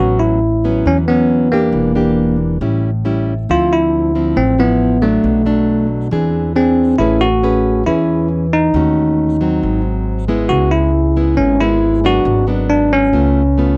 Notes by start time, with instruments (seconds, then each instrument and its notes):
Already playing: nylon-string guitar A2 F#3 B3 C#4, tine electric piano F#4
0.00 upright bass A1
0.19 tine electric piano E4
0.64 nylon-string guitar F#3 B3 C#4
0.86 upright bass E2, nylon-string guitar E3, tine electric piano C#4
1.08 nylon-string guitar F#3 B3 C#4, tine electric piano B3
1.52 tine electric piano A#3, nylon-string guitar A#3 D4 G4
1.72 upright bass E1, nylon-string guitar E3
1.95 nylon-string guitar A#3 D4 G4
2.61 upright bass A1, nylon-string guitar A2 G3 C#4 E4
3.05 nylon-string guitar G3 C#4 E4
3.49 upright bass D2, nylon-string guitar D3 F3 C4 E4, tine electric piano F4
3.73 tine electric piano E4
4.15 nylon-string guitar F3 C4 E4
4.36 upright bass A1, nylon-string guitar A2, tine electric piano C4
4.58 nylon-string guitar F3 E4, tine electric piano B3
5.02 nylon-string guitar F#3 A3 D4, tine electric piano A3
5.23 upright bass B1, nylon-string guitar B2
5.46 nylon-string guitar F#3 A3 D4
6.11 upright bass E2, nylon-string guitar E3 C4 D4 G#4
6.56 nylon-string guitar C4 D4 G#4, tine electric piano C4
6.98 upright bass A1, nylon-string guitar A3 C#4 G#4 B4, tine electric piano E4
7.21 tine electric piano F#4
7.43 nylon-string guitar C#4 G#4 B4
7.87 upright bass E2, nylon-string guitar E3 C#4 G#4 B4, tine electric piano E4
8.53 tine electric piano D#4
8.74 upright bass D#2, nylon-string guitar D#3 A3 C#4 F#4
9.41 nylon-string guitar F#3 C4
9.63 upright bass G#1, nylon-string guitar G#2
10.28 nylon-string guitar G#3 B3 E4
10.49 upright bass C#2, nylon-string guitar C#3, tine electric piano F#4
10.71 tine electric piano E4
11.16 nylon-string guitar G#3 B3 E4
11.37 upright bass G#1, nylon-string guitar G#2, tine electric piano C#4
11.60 nylon-string guitar G#3 B3 E4, tine electric piano E4
12.04 nylon-string guitar F#3 B3 D4, tine electric piano F#4
12.25 upright bass G#1, nylon-string guitar G#2
12.47 nylon-string guitar F#3 B3 D4
12.70 tine electric piano D4
12.93 tine electric piano C#4
13.13 upright bass C#2, nylon-string guitar C#3 A3 B3 F4
13.58 nylon-string guitar A3 B3 F4